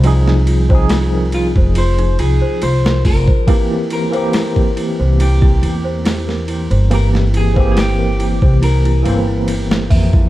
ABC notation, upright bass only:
X:1
M:4/4
L:1/16
Q:"Swing 16ths" 1/4=70
K:Cphr
V:1 name="Upright bass" clef=bass
C,,6- C,, F,,,3 C,, z C,,2 F,,, z | z6 z C,,3 =E,,4- E,, G,,,- | G,,,6- G,,, C,,3 G,,,4 F,,2 |]